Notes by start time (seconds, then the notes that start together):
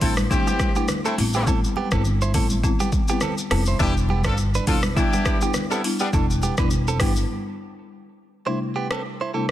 0.01 A1 G3 A3 C4 D4 E4 A4, kick, open hi-hat, low conga, shaker
0.17 cross-stick, high conga, shaker
0.30 G3 A3 C4 D4 E4 G4, kick, low conga, shaker
0.47 B3 G4, high conga, shaker
0.60 kick, cross-stick, high conga, shaker
0.75 G3 A3 B3 D4 E4 G4, shaker
0.88 cross-stick, low conga, shaker
1.05 A3 C4 E4 A4, shaker
1.18 A1 G3 B3 C4 E4, open hi-hat
1.33 E3 B3 C4 E4 G4, shaker
1.47 G3 B3 C4 E4 A4, kick, shaker
1.64 shaker
1.76 B3 G4, high conga
1.91 G1 G3 B3 C4 E4 A4, kick, cross-stick, shaker
2.05 low conga, shaker
2.21 E4 C5, high conga, shaker
2.34 A1 G3 B3 C4 E4 A4, kick, open hi-hat, low conga, shaker
2.50 high conga, shaker
2.64 G3 B3 C4 E4, kick, low conga, shaker
2.80 B3 G4, high conga, shaker
2.92 kick, high conga, shaker
3.08 G3 B3 C4 E4 G4, shaker
3.21 C4 A4, cross-stick, low conga, shaker
3.38 shaker
3.51 F1 G3 B3 C4 E4 A4, cross-stick, open hi-hat
3.66 E4 C5, shaker
3.80 E1 G3 B3 D4 E4 G4 B4, kick, shaker
3.97 shaker
4.09 B3 G4, high conga
4.24 G1 C4 D4 F4 A4, kick, cross-stick, shaker
4.37 low conga, shaker
4.54 D4 B4, high conga, shaker
4.67 E1 G3 B3 C4 D4 E4 F4 A4, kick, open hi-hat, low conga, shaker
4.83 cross-stick, high conga, shaker
4.96 G3 B3 D4 E4 G4, kick, low conga, shaker
5.13 B3 G4, high conga, shaker
5.26 kick, cross-stick, high conga, shaker
5.41 G3 B3 D4 E4 G4, shaker
5.54 cross-stick, low conga, shaker
5.71 G3 B3 C4 E4 A4, shaker
5.84 G3 B3 D4 E4, open hi-hat
5.99 G3 B3 D4 G4, shaker
6.13 E1 G3 B3 D4 E4 A4, kick, shaker
6.30 shaker
6.42 B3 G4, high conga, shaker
6.58 E1 G3 B3 D4 E4 B4, kick, cross-stick, shaker
6.71 low conga, shaker
6.88 C4 A4, high conga, shaker
7.00 G1 G3 B3 D4 E4 G4, kick, cross-stick, open hi-hat, low conga, shaker
7.16 high conga, shaker
8.46 C3 G3 A3 D4 E4 C5
8.76 B3 G4
8.91 C4 A4, cross-stick
9.21 E4 C5
9.34 C3 G3 A3 C4 D4 E4 A4